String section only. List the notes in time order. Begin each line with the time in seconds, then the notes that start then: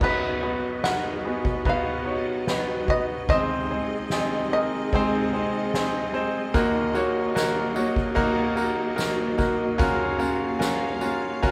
0.01 B3 F#4 D#5
3.29 C4 G#4
6.54 F#3 A#3
9.79 F5